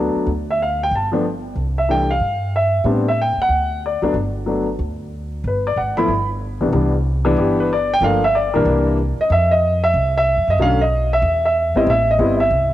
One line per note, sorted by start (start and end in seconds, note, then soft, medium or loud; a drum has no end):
0.00 0.11 D2 medium
0.00 0.27 F#3 medium
0.00 0.27 A3 soft
0.00 0.28 B3 soft
0.00 0.28 D4 medium
0.15 muted upright bass stroke soft
0.26 0.88 D2 medium
0.50 0.61 E5 medium
0.62 0.81 F5 medium
0.83 0.93 G5 medium
0.91 1.53 G1 medium
0.95 1.07 A5 medium
1.12 1.23 F3 medium
1.12 1.23 A3 medium
1.12 1.23 B3 medium
1.12 1.23 D4 medium
1.55 2.17 C2 medium
1.78 1.89 E5 medium
1.89 2.07 E3 soft
1.89 2.07 G3 soft
1.89 2.07 A3 soft
1.89 2.08 D4 soft
1.89 2.10 G5 medium
2.10 2.51 F5 medium
2.19 2.82 G2 medium
2.56 2.85 E5 medium
2.84 3.34 A2 medium
2.84 3.03 G3 medium
2.84 3.04 B3 soft
2.84 3.04 C4 soft
2.84 3.04 D4 medium
3.08 3.19 E5 medium
3.21 3.40 G5 medium
3.37 muted upright bass stroke soft
3.41 3.81 F#5 medium
3.49 3.99 D2 medium
3.86 4.14 D5 medium
4.02 4.13 D2 medium
4.02 4.13 F#3 medium
4.02 4.14 A3 soft
4.02 4.14 B3 soft
4.02 4.14 D4 medium
4.14 4.76 G1 medium
4.46 4.65 F#3 medium
4.46 4.65 A3 soft
4.46 4.65 B3 soft
4.46 4.66 D4 medium
4.79 5.41 D2 medium
5.44 5.74 G1 medium
5.44 5.66 B4 medium
5.67 5.77 D5 medium
5.76 6.06 G#1 medium
5.76 5.97 F#5 medium
5.97 6.08 F3 medium
5.97 6.08 A3 medium
5.97 6.08 B3 medium
5.97 6.08 E4 medium
5.97 6.27 B5 medium
6.08 6.57 G1 medium
6.61 6.72 B1 medium
6.61 6.72 C2 medium
6.61 6.72 E3 medium
6.61 6.72 G3 soft
6.61 6.72 B3 soft
6.61 6.72 D4 medium
6.73 7.34 C2 medium
6.73 6.91 E3 medium
6.73 6.92 G3 medium
6.73 6.92 B3 soft
6.73 6.92 D4 medium
7.25 7.67 E3 medium
7.25 7.67 G3 medium
7.25 7.67 B3 medium
7.25 7.67 D4 medium
7.36 7.98 G1 medium
7.36 7.58 G4 medium
7.60 7.71 B4 medium
7.73 7.91 D5 medium
7.94 8.03 G5 loud
8.01 8.50 G1 medium
8.01 8.20 F3 medium
8.01 8.20 A3 medium
8.01 8.20 A#3 soft
8.01 8.21 D4 medium
8.01 8.23 F5 medium
8.24 8.35 E5 medium
8.35 8.54 D5 medium
8.54 8.65 A#1 medium
8.54 8.96 E3 medium
8.54 8.96 G3 medium
8.54 8.96 A#3 medium
8.54 8.97 D4 medium
8.54 8.85 A#4 medium
8.65 9.14 C2 medium
9.18 9.31 D#5 medium
9.18 muted upright bass stroke soft
9.30 9.91 F2 medium
9.30 9.51 E5 medium
9.51 9.81 D#5 medium
9.84 10.13 E5 medium
9.94 10.34 C2 medium
10.18 10.57 E5 medium
10.37 10.47 F2 medium
10.48 10.57 F#2 medium
10.48 10.60 D#5 medium
10.58 11.20 B1 medium
10.58 10.78 D3 medium
10.58 10.78 F#3 medium
10.58 10.78 A3 medium
10.58 10.78 C#4 medium
10.62 10.80 F5 medium
10.82 11.10 D#5 medium
11.13 11.42 E5 medium
11.22 11.71 E2 medium
11.45 11.86 E5 medium
11.75 11.86 G#1 medium
11.75 11.87 G3 medium
11.75 11.86 B3 medium
11.75 11.87 C4 medium
11.75 11.87 E4 medium
11.75 11.88 D#5 medium
11.87 12.17 A1 medium
11.87 12.08 E5 medium
12.11 12.35 D#5 medium
12.18 12.49 G1 medium
12.18 12.37 G3 medium
12.18 12.38 B3 medium
12.18 12.38 C4 medium
12.18 12.38 E4 medium
12.36 12.38 D#5 medium
12.36 12.70 E5 medium
12.50 12.74 C2 medium